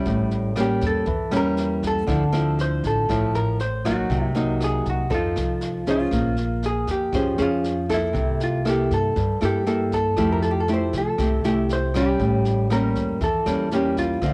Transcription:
Already playing: nylon-string guitar G3 C#4, hollow-body jazz guitar E4
0.05 upright bass A1, nylon-string guitar A2, kick, snare
0.31 snare
0.56 nylon-string guitar G3 A#3 C#4, cross-stick, snare
0.60 hollow-body jazz guitar G4
0.81 upright bass E2, kick, snare
0.86 hollow-body jazz guitar A4
1.06 upright bass E2, nylon-string guitar E3, kick, snare
1.31 upright bass E2, nylon-string guitar G3 A#3 C#4, cross-stick, snare
1.37 hollow-body jazz guitar A#4
1.57 snare
1.83 kick, snare
1.87 hollow-body jazz guitar A4
2.07 upright bass D2, nylon-string guitar D3 F3 C4 E4, kick, cross-stick, snare
2.32 nylon-string guitar F3 C4 E4, snare
2.58 hollow-body jazz guitar C5, snare
2.84 upright bass A1, hollow-body jazz guitar A4, kick, snare
3.09 upright bass A1, nylon-string guitar A2 F3 C4 E4, kick, cross-stick, snare
3.35 upright bass A1, hollow-body jazz guitar A#4, snare
3.60 hollow-body jazz guitar C5, snare
3.85 nylon-string guitar F#3 A#3 D#4, hollow-body jazz guitar F#4, kick, cross-stick, snare
4.10 upright bass C2, nylon-string guitar C3, kick, snare
4.35 nylon-string guitar F#3 A#3 D#4, snare
4.60 hollow-body jazz guitar G#4, cross-stick, snare
4.86 upright bass C2, kick, snare
4.90 hollow-body jazz guitar F#4
5.10 upright bass F2, nylon-string guitar F3 C4 D#4 A4, kick, snare
5.14 hollow-body jazz guitar F4
5.36 upright bass C2, cross-stick, snare
5.61 snare
5.86 nylon-string guitar C#4 G#4 C5, kick, snare
5.91 hollow-body jazz guitar F4
6.11 upright bass A#1, nylon-string guitar A#3, kick, cross-stick, snare
6.37 snare
6.63 hollow-body jazz guitar G#4, snare
6.87 upright bass F2, hollow-body jazz guitar G4, kick, snare
7.13 upright bass F2, nylon-string guitar F3 C#4 G#4 C5, kick, cross-stick, snare
7.38 upright bass F2, nylon-string guitar C#4 G#4 C5, snare
7.42 hollow-body jazz guitar F4
7.64 snare
7.89 nylon-string guitar A#3 E4 A4, kick, cross-stick, snare
7.94 hollow-body jazz guitar E4
8.13 upright bass C2, nylon-string guitar C3, kick, snare
8.40 hollow-body jazz guitar F4, snare
8.65 nylon-string guitar A#3 E4 A4, cross-stick, snare
8.69 hollow-body jazz guitar G4
8.91 upright bass G2, hollow-body jazz guitar A4, kick, snare
9.16 upright bass G2, nylon-string guitar G2, kick, snare
9.41 upright bass G2, nylon-string guitar A#3 E4 A4, cross-stick, snare
9.45 hollow-body jazz guitar G4
9.67 nylon-string guitar A#3 E4 A4, snare
9.92 hollow-body jazz guitar A4, kick, snare
10.17 upright bass F2, nylon-string guitar F3 A3 E4 G4, kick, cross-stick, snare
10.32 hollow-body jazz guitar A#4
10.42 hollow-body jazz guitar A4, snare
10.51 hollow-body jazz guitar G4
10.60 hollow-body jazz guitar A4
10.68 nylon-string guitar A3 E4 G4, snare
10.74 hollow-body jazz guitar C5
10.93 upright bass C2, kick, snare
10.98 hollow-body jazz guitar A4
11.18 upright bass C2, nylon-string guitar C3 A3 E4 G4, kick, cross-stick, snare
11.44 upright bass C2, nylon-string guitar A3 E4 G4, snare
11.54 hollow-body jazz guitar G4
11.69 hollow-body jazz guitar C5, snare
11.94 nylon-string guitar G3 C#4, hollow-body jazz guitar G4, kick, cross-stick, snare
12.20 upright bass A1, nylon-string guitar A2, kick, snare
12.45 snare
12.70 nylon-string guitar G3 A#3 C#4, hollow-body jazz guitar A#4, cross-stick, snare
12.95 upright bass E2, kick, snare
13.21 upright bass E2, nylon-string guitar E3, hollow-body jazz guitar A4, kick, snare
13.46 upright bass E2, nylon-string guitar G3 A#3 C#4, cross-stick, snare
13.71 nylon-string guitar G3 A#3 C#4, hollow-body jazz guitar G4, snare
13.97 hollow-body jazz guitar F4, kick, snare
14.21 upright bass D2, nylon-string guitar D3 F3 C4, grand piano A4 C5 E5, kick, cross-stick, snare

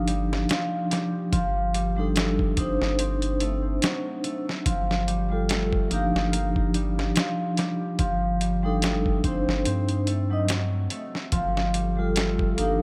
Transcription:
Already playing: sub bass G1, vibraphone F3 D4 D#4 G4, harp A#3
0.08 harp G3, closed hi-hat
0.33 snare
0.49 harp F3, snare, closed hi-hat
0.91 harp G3, snare, closed hi-hat
1.33 sub bass G1, harp F3, kick, closed hi-hat
1.74 harp G3, closed hi-hat
1.97 vibraphone G3 D4 D#4 A4
2.16 harp A3, snare, closed hi-hat
2.39 kick
2.57 sub bass G1, harp C4, vibraphone D4 D#4 C5, kick, closed hi-hat
2.81 sub bass G1, snare
2.99 harp C4, closed hi-hat
3.22 closed hi-hat
3.40 harp A3, closed hi-hat
3.82 harp F#3, snare, closed hi-hat
4.24 harp A3, closed hi-hat
4.49 snare
4.66 sub bass G1, harp F3, kick, closed hi-hat
4.91 snare
5.07 harp G3, closed hi-hat
5.30 vibraphone G3 F4 A4
5.49 harp A3, snare, closed hi-hat
5.73 kick
5.88 sub bass G1, vibraphone F3 D4 D#4, harp A#3, closed hi-hat
5.93 vibraphone G4
6.15 sub bass G1, snare
6.32 harp A#3, closed hi-hat
6.56 kick
6.74 harp G3, closed hi-hat
6.99 snare
7.16 harp F3, snare, closed hi-hat
7.57 harp G3, snare, closed hi-hat
7.99 sub bass G1, harp F3, kick, closed hi-hat
8.41 harp G3, closed hi-hat
8.63 vibraphone G3 D4 D#4 A4
8.82 harp A3, snare, closed hi-hat
9.06 kick
9.24 sub bass G1, harp C4, vibraphone D4 D#4 C5, kick, closed hi-hat
9.48 sub bass G1, snare
9.65 sub bass G2, harp C4, closed hi-hat
9.89 closed hi-hat
10.07 harp A3, closed hi-hat
10.30 vibraphone F#3 D4 D#4 D#5
10.48 harp F#3, snare, closed hi-hat
10.90 harp A3, closed hi-hat
11.15 snare
11.32 sub bass G1, harp F3, ambient pad A4, kick, closed hi-hat
11.57 snare
11.74 harp G3, closed hi-hat
11.97 vibraphone G3 F4 A4
12.16 harp A3, snare, closed hi-hat
12.39 kick
12.56 sub bass G1, vibraphone F3 D4 D#4, harp A#3, closed hi-hat
12.61 vibraphone G4

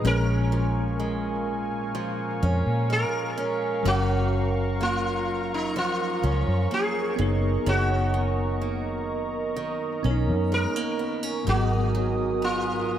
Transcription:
Already playing: steel-string acoustic guitar F#3 B3
0.02 fingered electric bass A#1, tine electric piano A#2 G#3 C#4, steel-string acoustic guitar A#2 C#4, analog synth pad A#4 F5 G#5 C#6
0.07 sitar A#4, tine electric piano A#4
0.52 steel-string acoustic guitar F3
1.00 steel-string acoustic guitar G#3
1.95 steel-string acoustic guitar F3
2.43 fingered electric bass F2, steel-string acoustic guitar C#4
2.67 fingered electric bass A#2
2.90 steel-string acoustic guitar G#3, sitar A#4
3.38 steel-string acoustic guitar C#4
3.83 fingered electric bass F#1, steel-string acoustic guitar F#2 C#4, tine electric piano F#3 C#4 F5, analog synth pad A#5
3.88 sitar F#4, tine electric piano A#4
4.81 steel-string acoustic guitar A#3, sitar F4
5.54 sitar D#4
5.76 steel-string acoustic guitar F3, sitar F4
6.23 fingered electric bass C#2, steel-string acoustic guitar C#4
6.48 fingered electric bass F#2
6.71 steel-string acoustic guitar A#3, sitar G#4
7.16 fingered electric bass F#1, steel-string acoustic guitar F#2, tine electric piano B3 D#4, analog synth pad A#4 D#5 A#5
7.22 tine electric piano A#4
7.66 fingered electric bass F#1, steel-string acoustic guitar F#2 C#4, sitar F#4
8.14 steel-string acoustic guitar D#3
8.61 steel-string acoustic guitar A#3
9.56 steel-string acoustic guitar D#3
10.03 fingered electric bass B1, tine electric piano B3 C#4 A#4, steel-string acoustic guitar C#4
10.11 tine electric piano D#4
10.29 fingered electric bass F#2
10.52 steel-string acoustic guitar G#3, sitar A#4
10.76 steel-string acoustic guitar A#3
10.99 steel-string acoustic guitar B3
11.23 steel-string acoustic guitar C#4
11.45 fingered electric bass G#1, tine electric piano G#2 F#3 A#3, steel-string acoustic guitar G#2 D#4, analog synth pad D#5 G#5 D#6
11.49 sitar F#4, tine electric piano G#4
11.55 tine electric piano B3
11.95 steel-string acoustic guitar F#3
12.42 steel-string acoustic guitar B3, sitar F4

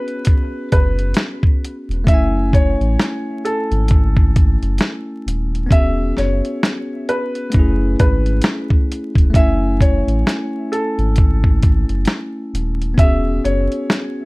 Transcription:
Already playing: tine electric piano B3 C#4 F#4 G#4, felt piano B4
0.08 closed hi-hat
0.25 kick, closed hi-hat
0.72 sub bass F#1, felt piano B4, kick, closed hi-hat
0.99 closed hi-hat
1.14 snare, closed hi-hat
1.43 kick
1.65 closed hi-hat
1.89 sub bass E1, closed hi-hat
2.04 sub bass F#1, tine electric piano A3 C#4, felt piano E5, kick, closed hi-hat
2.10 tine electric piano E4 G#5
2.53 felt piano C#5, kick, closed hi-hat
2.80 sub bass A1, closed hi-hat
3.00 snare, closed hi-hat
3.45 felt piano A4, closed hi-hat
3.71 sub bass G#1, closed hi-hat
3.88 kick, closed hi-hat
4.17 kick
4.36 kick, closed hi-hat
4.62 sub bass F#1, closed hi-hat
4.78 snare, closed hi-hat
5.26 sub bass D#1, closed hi-hat
5.55 closed hi-hat
5.66 tine electric piano B3 C#4
5.71 sub bass E1, tine electric piano F#4, felt piano E5, kick, closed hi-hat
5.75 tine electric piano G#4
6.17 sub bass F#1, felt piano C#5, snare, closed hi-hat
6.45 closed hi-hat
6.63 snare, closed hi-hat
7.09 felt piano B4, closed hi-hat
7.35 closed hi-hat
7.50 tine electric piano A3 C#4, closed hi-hat
7.54 sub bass F#1, tine electric piano E4, kick
7.59 tine electric piano G#4
7.99 sub bass G#1, felt piano B4, kick, closed hi-hat
8.26 closed hi-hat
8.42 snare, closed hi-hat
8.70 kick
8.92 closed hi-hat
9.15 sub bass E1, kick, closed hi-hat
9.30 tine electric piano A3 C#4, kick
9.34 sub bass F#1, tine electric piano E4, felt piano E5, closed hi-hat
9.39 tine electric piano G#5
9.81 felt piano C#5, kick, closed hi-hat
10.07 sub bass A1, closed hi-hat
10.27 snare, closed hi-hat
10.72 felt piano A4, closed hi-hat
10.98 sub bass G#1, closed hi-hat
11.16 kick, closed hi-hat
11.44 kick
11.62 kick, closed hi-hat
11.89 sub bass F#1, closed hi-hat
12.05 snare, closed hi-hat
12.53 sub bass D#1, closed hi-hat
12.82 closed hi-hat
12.94 tine electric piano B3 C#4, kick
12.98 sub bass E1, tine electric piano F#4, felt piano E5, closed hi-hat
13.03 tine electric piano G#4
13.44 sub bass F#1, felt piano C#5, closed hi-hat
13.72 closed hi-hat
13.90 snare, closed hi-hat

